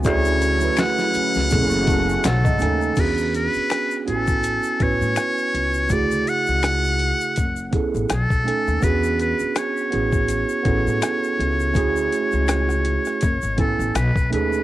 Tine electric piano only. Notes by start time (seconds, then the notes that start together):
0.03 A3 C#4 E4 F#4 G#4
0.60 A3 C#4 E4 F#4
0.64 B4
1.49 B3 C#4 E4 G#4 A4
1.88 A5
2.08 G#5
2.24 F#5
2.45 D#5
2.59 A3 C#4 D#4 A4 G#5
2.96 B3 C#4 D4 F#4 G#4
4.05 B3 C#4 E4 F#4 G4
4.16 G#5
4.79 B3 C#4 E4 F#4 B4
5.89 C#3 A3 E4 F#4
5.93 G#4
7.71 B3 C#4 E4 G#4
7.75 A4
8.44 A3 C#4 D#4 A4 G#5
8.81 B3 C#4 D4 F#4 G#4
9.90 B3 C#4 E4 F#4 G#4
10.63 B3 C#4 E4 F#4 A4
11.73 A3 C#4 E4 F#4 G#4
13.57 B3 C#4 E4 A4 G#5
14.30 A3 C#4 D#4 G#4
14.34 A4